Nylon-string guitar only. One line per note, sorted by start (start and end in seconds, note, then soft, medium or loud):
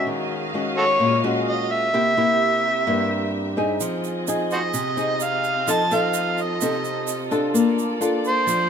0.00 0.49 G#3 soft
0.00 0.49 C#4 soft
0.00 0.50 F#4 medium
0.07 0.98 D#3 medium
0.54 1.20 G#3 soft
0.54 1.20 C#4 soft
0.54 1.20 F#4 soft
1.00 1.91 A#2 medium
1.24 1.92 G#3 medium
1.24 1.92 C#4 medium
1.24 1.92 F#4 medium
1.93 2.84 C3 medium
1.93 2.13 A#3 soft
1.93 2.13 E4 medium
1.93 2.13 G4 medium
2.17 2.83 A#3 medium
2.17 2.84 E4 medium
2.17 2.84 G4 medium
2.87 3.78 G2 medium
2.87 3.53 A#3 soft
2.87 3.53 E4 soft
2.87 3.54 G4 medium
3.57 4.23 C4 medium
3.57 4.24 D#4 soft
3.57 4.24 G#4 medium
3.81 4.72 F3 medium
4.27 4.74 C4 soft
4.27 4.74 D#4 soft
4.27 4.74 G#4 medium
4.74 5.65 C3 medium
4.97 5.65 C4 medium
4.97 5.66 D#4 medium
4.97 5.66 G#4 medium
5.67 6.58 F3 medium
5.67 5.81 C4 soft
5.67 5.81 D#4 soft
5.67 5.82 A4 medium
5.91 6.57 C4 medium
5.91 6.58 D#4 soft
5.91 6.58 A4 medium
6.62 7.52 C3 medium
6.62 7.08 C4 soft
6.62 7.08 D#4 medium
6.62 7.08 A4 medium
7.31 7.97 D4 medium
7.31 7.97 F4 medium
7.31 7.98 A4 medium
7.54 8.45 A#3 medium
8.01 8.67 D4 soft
8.01 8.67 F4 soft
8.01 8.68 A4 soft
8.47 8.70 F3 medium